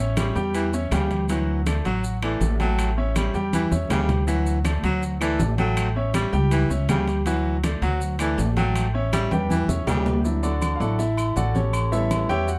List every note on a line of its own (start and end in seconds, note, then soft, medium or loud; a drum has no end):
0.00 0.30 A1 loud
0.00 0.14 C#4 medium
0.00 0.14 C#5 medium
0.00 0.14 E5 medium
0.17 0.37 G3 medium
0.17 0.32 C#4 medium
0.17 0.33 C#5 medium
0.17 0.33 E5 medium
0.17 high conga loud
0.17 high timbale loud
0.17 claves medium
0.17 maracas medium
0.35 0.88 E2 loud
0.35 0.66 G3 medium
0.35 0.66 G4 medium
0.35 0.67 G5 medium
0.35 high conga soft
0.35 maracas soft
0.54 0.74 E3 medium
0.54 high conga soft
0.54 high timbale medium
0.54 maracas medium
0.73 0.89 C#4 medium
0.73 0.89 C#5 medium
0.73 0.89 E5 medium
0.73 high conga soft
0.73 maracas medium
0.91 1.79 D2 loud
0.91 1.11 C#3 medium
0.91 1.23 G3 medium
0.91 1.23 G4 medium
0.91 1.23 G5 medium
0.91 high conga medium
0.91 high timbale loud
0.91 low timbale medium
0.91 claves medium
0.91 maracas medium
1.11 high conga medium
1.11 high timbale medium
1.11 maracas soft
1.29 1.60 E3 medium
1.29 1.60 F#3 medium
1.29 1.60 F#4 medium
1.29 1.60 F#5 medium
1.29 high conga soft
1.29 high timbale medium
1.29 maracas medium
1.48 high conga soft
1.66 1.82 A3 medium
1.66 1.82 A4 medium
1.66 1.82 D5 medium
1.66 high conga loud
1.66 high timbale loud
1.66 claves medium
1.66 maracas medium
1.85 2.37 A1 medium
1.85 2.05 F#3 medium
1.85 2.16 F#3 medium
1.85 2.16 F#4 medium
1.85 2.16 F#5 medium
1.85 high conga soft
1.85 high timbale medium
1.85 maracas soft
2.04 high conga soft
2.04 maracas medium
2.22 2.42 E3 medium
2.22 2.53 A3 medium
2.22 2.54 A4 medium
2.22 2.54 D5 medium
2.22 high conga soft
2.22 high timbale medium
2.22 claves medium
2.41 3.28 A1 loud
2.41 high conga medium
2.41 low timbale medium
2.41 maracas medium
2.60 2.91 F#3 medium
2.60 2.90 A3 medium
2.60 2.91 A4 medium
2.60 2.91 G5 medium
2.60 high conga medium
2.60 high timbale medium
2.60 maracas soft
2.78 high conga soft
2.78 high timbale loud
2.78 claves medium
2.78 maracas medium
2.97 3.13 C#4 medium
2.97 3.13 C#5 medium
2.97 3.13 E5 medium
2.97 high conga soft
3.16 3.36 G3 medium
3.16 3.31 C#4 medium
3.16 3.31 C#5 medium
3.16 3.32 E5 medium
3.16 high conga loud
3.16 high timbale medium
3.16 claves medium
3.16 maracas medium
3.34 3.69 E2 medium
3.34 3.65 G3 medium
3.34 3.65 G4 medium
3.34 3.65 G5 medium
3.34 high conga soft
3.34 maracas soft
3.53 3.73 E3 medium
3.53 high conga medium
3.53 high timbale medium
3.53 maracas medium
3.71 3.89 E2 medium
3.71 3.87 C#4 medium
3.71 3.87 C#5 medium
3.71 3.87 E5 medium
3.71 high conga medium
3.71 maracas medium
3.90 4.78 D2 loud
3.90 4.10 C#3 medium
3.90 4.21 G3 medium
3.90 4.21 G4 medium
3.90 4.21 G5 medium
3.90 low conga medium
3.90 high timbale loud
3.90 low timbale medium
3.90 claves medium
3.90 maracas medium
4.09 low conga medium
4.09 high timbale medium
4.09 maracas soft
4.27 4.59 E3 medium
4.27 4.58 F#3 medium
4.27 4.58 F#4 medium
4.27 4.58 F#5 medium
4.27 high conga soft
4.27 high timbale medium
4.27 maracas medium
4.46 high conga soft
4.46 maracas medium
4.64 4.80 A3 medium
4.64 4.80 A4 medium
4.64 4.80 D5 medium
4.64 high conga loud
4.64 high timbale medium
4.64 claves medium
4.64 maracas medium
4.83 5.36 D2 medium
4.83 5.03 F#3 medium
4.83 5.14 F#3 medium
4.83 5.14 F#4 medium
4.83 5.15 F#5 medium
4.83 high conga soft
4.83 high timbale medium
4.83 maracas soft
5.02 high conga soft
5.02 maracas medium
5.21 5.41 E3 medium
5.21 5.52 A3 medium
5.21 5.52 A4 medium
5.21 5.52 D5 medium
5.21 high conga soft
5.21 high timbale medium
5.21 claves medium
5.21 maracas medium
5.40 6.27 A1 loud
5.40 high conga medium
5.40 low timbale medium
5.40 maracas medium
5.58 5.89 F#3 medium
5.58 5.89 A3 medium
5.58 5.89 A4 medium
5.58 5.89 G5 medium
5.58 high conga medium
5.58 high timbale medium
5.58 maracas soft
5.77 high conga soft
5.77 high timbale loud
5.77 claves medium
5.77 maracas medium
5.96 6.11 C#4 medium
5.96 6.11 C#5 medium
5.96 6.11 E5 medium
5.96 high conga soft
6.14 6.34 G3 medium
6.14 6.30 C#4 medium
6.14 6.30 C#5 medium
6.14 6.30 E5 medium
6.14 high conga medium
6.14 high timbale loud
6.14 claves medium
6.14 maracas medium
6.33 6.67 C#2 loud
6.33 6.63 G3 medium
6.33 6.64 G4 medium
6.33 6.64 G5 loud
6.33 high conga soft
6.33 maracas soft
6.51 6.71 E3 medium
6.51 high conga soft
6.51 high timbale medium
6.51 maracas medium
6.70 6.87 C#2 medium
6.70 6.85 C#4 medium
6.70 6.86 C#5 medium
6.70 6.86 E5 medium
6.70 high conga soft
6.70 maracas medium
6.88 7.76 D2 loud
6.88 7.09 C#3 medium
6.88 7.20 G3 medium
6.88 7.20 G4 medium
6.88 7.20 G5 medium
6.88 high conga medium
6.88 high timbale medium
6.88 low timbale medium
6.88 claves medium
6.88 maracas medium
7.08 high timbale medium
7.08 maracas soft
7.26 7.58 E3 medium
7.26 7.57 F#3 medium
7.26 7.57 F#4 medium
7.26 7.57 F#5 medium
7.26 high conga soft
7.26 high timbale medium
7.26 maracas medium
7.45 high conga soft
7.64 7.79 A3 medium
7.64 7.79 A4 medium
7.64 7.79 D5 medium
7.64 high conga loud
7.64 high timbale loud
7.64 claves medium
7.64 maracas medium
7.82 8.34 D2 loud
7.82 8.13 F#3 medium
7.82 8.02 F#3 medium
7.82 8.13 F#4 medium
7.82 8.13 F#5 medium
7.82 high conga soft
7.82 high timbale medium
7.82 maracas soft
8.01 high conga soft
8.01 maracas medium
8.19 8.39 E3 medium
8.19 8.50 A3 medium
8.19 8.50 A4 medium
8.19 8.51 D5 medium
8.19 high conga soft
8.19 high timbale loud
8.19 claves medium
8.19 maracas medium
8.38 9.25 A1 loud
8.38 high conga medium
8.38 low timbale medium
8.38 maracas medium
8.57 8.88 F#3 medium
8.57 8.88 A3 medium
8.57 8.88 A4 medium
8.57 8.88 G5 medium
8.57 high conga medium
8.57 high timbale medium
8.57 maracas soft
8.76 high conga soft
8.76 high timbale medium
8.76 claves medium
8.76 maracas medium
8.94 9.09 C#4 medium
8.94 9.10 C#5 medium
8.94 9.10 E5 medium
8.94 high conga soft
9.13 9.32 G3 medium
9.13 9.28 C#4 medium
9.13 9.28 C#5 medium
9.13 9.28 E5 medium
9.13 high conga loud
9.13 high timbale medium
9.13 claves medium
9.13 maracas medium
9.31 9.66 E2 loud
9.31 9.62 G3 medium
9.31 9.62 G4 medium
9.31 9.62 G5 medium
9.31 high conga medium
9.31 high timbale medium
9.31 maracas soft
9.50 9.69 E3 medium
9.50 high conga medium
9.50 maracas medium
9.68 9.86 E2 medium
9.68 9.84 C#4 medium
9.68 9.84 C#5 medium
9.68 9.84 E5 medium
9.68 low conga medium
9.68 maracas medium
9.87 10.74 D2 loud
9.87 10.07 C#3 medium
9.87 10.18 G3 medium
9.87 10.18 G4 medium
9.87 10.18 G5 medium
9.87 low conga medium
9.87 low timbale loud
9.87 claves medium
9.87 maracas medium
10.06 low conga medium
10.06 low timbale medium
10.06 maracas soft
10.24 10.49 F#3 medium
10.24 10.42 D4 medium
10.24 10.50 E4 medium
10.24 maracas medium
10.43 10.78 D4 medium
10.43 10.78 F#4 medium
10.43 10.78 A4 medium
10.43 10.78 D5 medium
10.43 high conga soft
10.43 low agogo medium
10.43 maracas medium
10.62 high conga loud
10.62 low agogo loud
10.62 claves medium
10.62 maracas medium
10.76 10.78 F5 medium
10.80 11.32 A1 loud
10.80 10.97 F#3 soft
10.80 10.97 D4 soft
10.80 10.97 E4 medium
10.80 10.99 F#4 medium
10.80 10.98 A4 medium
10.80 10.99 D5 medium
10.80 10.98 F#5 medium
10.80 high conga soft
10.80 maracas soft
10.99 11.34 E4 medium
10.99 11.34 A4 medium
10.99 11.34 E5 medium
10.99 high conga soft
10.99 low agogo medium
10.99 maracas medium
11.17 high conga soft
11.17 low agogo loud
11.17 claves medium
11.17 maracas medium
11.36 12.23 A1 loud
11.36 11.55 F#4 medium
11.36 11.54 A4 medium
11.36 11.55 D5 medium
11.36 11.54 F#5 medium
11.36 high conga medium
11.36 maracas medium
11.55 11.90 C#4 medium
11.55 11.90 G4 soft
11.55 11.90 A4 medium
11.55 11.90 C#5 medium
11.55 high conga medium
11.55 low agogo medium
11.55 maracas soft
11.73 high conga soft
11.73 low agogo loud
11.73 claves medium
11.73 maracas medium
11.92 12.45 G3 medium
11.92 12.45 B3 medium
11.92 12.46 C#4 medium
11.92 12.27 E4 medium
11.92 12.27 A4 medium
11.92 12.27 C#5 medium
11.92 12.27 E5 loud
11.92 maracas medium
12.11 high conga medium
12.11 low agogo loud
12.11 claves medium
12.11 maracas medium
12.29 12.59 E2 loud
12.29 12.48 G4 medium
12.29 12.48 C#5 medium
12.29 12.48 E5 medium
12.29 12.47 G5 loud
12.29 high conga soft
12.29 low agogo medium
12.29 maracas soft
12.48 12.59 F#4 medium
12.48 12.59 F#5 medium
12.48 high conga soft
12.48 maracas medium